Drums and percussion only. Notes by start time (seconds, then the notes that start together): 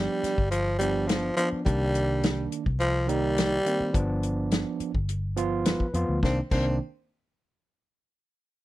0.24 snare, closed hi-hat
0.38 kick
0.52 closed hi-hat
0.81 closed hi-hat
1.09 snare, closed hi-hat
1.38 closed hi-hat
1.66 kick, closed hi-hat
1.95 closed hi-hat
2.23 snare, closed hi-hat
2.52 closed hi-hat
2.66 kick
2.80 closed hi-hat
3.09 closed hi-hat
3.38 snare, closed hi-hat
3.66 closed hi-hat
3.94 kick, closed hi-hat
4.23 closed hi-hat
4.51 snare, closed hi-hat
4.80 closed hi-hat
4.95 kick
5.09 closed hi-hat
5.37 closed hi-hat
5.65 snare, closed hi-hat
5.80 kick
5.94 closed hi-hat
6.23 kick, snare
6.51 kick, crash